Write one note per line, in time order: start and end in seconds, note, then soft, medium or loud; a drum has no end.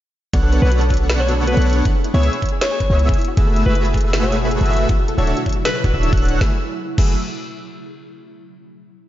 0.33 0.60 B1 loud
0.33 0.60 B3 medium
0.33 0.60 D4 medium
0.33 0.37 F#4 medium
0.33 0.60 A4 medium
0.33 0.60 C#5 medium
0.33 0.60 F#5 medium
0.33 0.60 F#6 medium
0.33 kick loud
0.33 closed hi-hat medium
0.33 ride soft
0.43 0.47 A4 medium
0.52 0.56 B4 loud
0.52 closed hi-hat medium
0.62 1.55 B1 loud
0.62 1.55 B3 medium
0.62 1.55 D4 medium
0.62 1.55 A4 medium
0.62 0.77 B4 loud
0.62 0.66 C#5 medium
0.62 1.55 C#5 medium
0.62 1.55 F#5 medium
0.62 1.55 F#6 medium
0.71 0.75 F#4 medium
0.71 closed hi-hat medium
0.81 0.83 A4 medium
0.81 closed hi-hat medium
0.90 0.94 F#4 medium
0.90 kick medium
0.90 closed hi-hat soft
0.94 closed hi-hat medium
0.97 1.04 A4 medium
0.97 closed hi-hat medium
1.09 1.13 B4 loud
1.09 snare loud
1.09 closed hi-hat medium
1.09 ride soft
1.19 1.23 C#5 medium
1.19 1.34 C#5 medium
1.28 1.32 F#4 medium
1.28 closed hi-hat medium
1.38 1.40 A4 medium
1.47 1.51 F#4 medium
1.47 1.63 B4 medium
1.47 closed hi-hat medium
1.57 1.82 B1 loud
1.57 1.84 B3 medium
1.57 1.84 D4 medium
1.57 1.61 A4 medium
1.57 1.84 A4 medium
1.57 1.84 C#5 medium
1.57 1.84 F#5 medium
1.57 1.84 F#6 medium
1.57 closed hi-hat medium
1.62 closed hi-hat medium
1.66 1.70 B4 loud
1.66 closed hi-hat medium
1.66 open hi-hat medium
1.73 1.80 C#5 medium
1.73 closed hi-hat medium
1.85 1.89 E4 medium
1.85 kick loud
1.85 closed hi-hat medium
1.85 ride soft
1.95 1.97 G#4 medium
2.04 2.08 E4 medium
2.04 closed hi-hat medium
2.14 2.30 C#2 loud
2.14 2.32 B3 medium
2.14 2.32 E4 medium
2.14 2.32 G#4 medium
2.14 2.18 G#4 medium
2.14 2.29 C#5 loud
2.14 2.32 C#5 medium
2.14 2.32 E5 medium
2.14 2.32 E6 medium
2.23 2.27 B4 loud
2.23 closed hi-hat medium
2.33 2.37 C#5 medium
2.33 closed hi-hat medium
2.42 2.46 E4 medium
2.42 kick medium
2.42 closed hi-hat medium
2.46 closed hi-hat medium
2.49 2.54 G#4 medium
2.49 closed hi-hat medium
2.61 2.65 E4 medium
2.61 3.15 C#5 loud
2.61 snare loud
2.61 closed hi-hat medium
2.61 ride soft
2.71 2.75 G#4 medium
2.80 2.84 B4 loud
2.80 kick medium
2.80 closed hi-hat medium
2.90 3.15 C#2 medium
2.90 3.17 B3 medium
2.90 3.17 E4 medium
2.90 3.17 G#4 medium
2.90 2.94 C#5 medium
2.90 3.17 C#5 medium
2.90 3.17 E5 loud
2.90 3.17 E6 loud
2.99 3.03 E4 medium
2.99 closed hi-hat medium
3.09 3.11 G#4 medium
3.09 kick loud
3.09 closed hi-hat medium
3.14 closed hi-hat medium
3.18 3.22 E4 medium
3.18 6.38 E4 medium
3.18 closed hi-hat medium
3.18 open hi-hat medium
3.25 3.32 F#4 medium
3.25 closed hi-hat medium
3.37 3.64 F#1 loud
3.37 3.64 A3 medium
3.37 3.64 F#4 medium
3.37 3.41 G#4 loud
3.37 3.64 G#4 medium
3.37 3.64 B4 medium
3.37 3.64 E5 medium
3.37 3.64 E6 medium
3.37 kick loud
3.37 closed hi-hat medium
3.37 ride soft
3.47 3.51 A4 medium
3.56 3.60 E4 medium
3.56 closed hi-hat medium
3.66 4.59 F#1 loud
3.66 4.59 A3 medium
3.66 3.68 F#4 medium
3.66 4.59 F#4 medium
3.66 4.59 G#4 medium
3.66 3.81 B4 loud
3.66 4.59 B4 medium
3.66 4.59 E5 medium
3.66 4.59 E6 medium
3.75 3.79 E4 medium
3.75 closed hi-hat medium
3.85 3.89 F#4 medium
3.85 closed hi-hat medium
3.94 3.98 G#4 loud
3.94 kick medium
3.94 closed hi-hat soft
3.98 closed hi-hat medium
4.01 4.08 A4 medium
4.01 closed hi-hat medium
4.13 4.17 E4 medium
4.13 snare loud
4.13 closed hi-hat medium
4.13 ride soft
4.23 4.25 F#4 medium
4.23 4.38 C#5 medium
4.32 4.36 E4 medium
4.32 closed hi-hat medium
4.42 4.46 F#4 medium
4.51 4.55 G#4 loud
4.51 closed hi-hat medium
4.61 4.86 F#1 loud
4.61 4.88 A3 medium
4.61 4.88 F#4 medium
4.61 4.88 G#4 medium
4.61 4.65 A4 medium
4.61 4.88 B4 medium
4.61 4.88 E5 loud
4.61 4.88 E6 medium
4.61 closed hi-hat medium
4.66 closed hi-hat medium
4.70 4.74 E4 medium
4.70 4.86 E5 loud
4.70 closed hi-hat medium
4.70 open hi-hat medium
4.77 4.82 F#4 medium
4.77 closed hi-hat medium
4.89 4.93 E4 medium
4.89 kick loud
4.89 closed hi-hat medium
4.89 ride soft
4.99 5.03 F#4 medium
5.08 5.12 A4 loud
5.08 closed hi-hat medium
5.18 5.34 D1 loud
5.18 5.36 D4 medium
5.18 5.36 F#4 medium
5.18 5.36 A4 medium
5.18 5.24 C#5 medium
5.18 5.21 C#5 medium
5.18 5.36 C#5 medium
5.18 5.36 E5 medium
5.18 5.36 E6 medium
5.27 5.31 E4 medium
5.27 5.33 C#5 medium
5.27 closed hi-hat medium
5.37 5.39 F#4 medium
5.37 closed hi-hat medium
5.46 5.50 E4 medium
5.46 kick medium
5.46 closed hi-hat soft
5.49 closed hi-hat medium
5.53 5.59 F#4 medium
5.53 closed hi-hat medium
5.65 5.69 A4 loud
5.65 5.94 B4 loud
5.65 snare loud
5.65 closed hi-hat medium
5.65 ride soft
5.75 5.78 C#5 medium
5.84 5.92 D1 loud
5.84 5.92 D4 medium
5.84 5.88 E4 medium
5.84 5.92 F#4 medium
5.84 5.92 A4 medium
5.84 5.92 C#5 medium
5.84 5.92 F#5 loud
5.84 5.92 F#6 medium
5.84 kick medium
5.84 closed hi-hat medium
5.94 6.11 D1 loud
5.94 6.11 D4 medium
5.94 6.11 F#4 medium
5.94 5.96 F#4 medium
5.94 6.11 A4 medium
5.94 6.10 C#5 medium
5.94 6.10 E5 medium
5.94 6.10 E6 medium
6.03 6.07 E4 medium
6.03 closed hi-hat medium
6.13 6.39 D1 loud
6.13 6.39 D4 loud
6.13 6.16 F#4 medium
6.13 6.39 F#4 medium
6.13 6.39 A4 loud
6.13 6.39 C#5 loud
6.13 6.39 F#5 loud
6.13 6.39 F#6 loud
6.13 kick loud
6.13 closed hi-hat soft
6.17 closed hi-hat medium
6.22 6.26 A4 loud
6.22 closed hi-hat medium
6.22 open hi-hat medium
6.29 6.35 C#5 medium
6.29 closed hi-hat medium
6.41 6.52 F#1 loud
6.41 6.52 A3 medium
6.41 6.52 E4 loud
6.41 6.52 F#4 medium
6.41 6.52 B4 medium
6.41 6.52 E5 medium
6.41 6.52 E6 loud
6.41 kick loud
6.41 snare medium
6.98 7.16 F#1 medium
6.98 7.12 A3 medium
6.98 7.16 E4 loud
6.98 7.12 F#4 medium
6.98 7.12 G#4 medium
6.98 7.12 B4 medium
6.98 7.12 E5 medium
6.98 7.12 E6 medium
6.98 kick loud
6.98 crash medium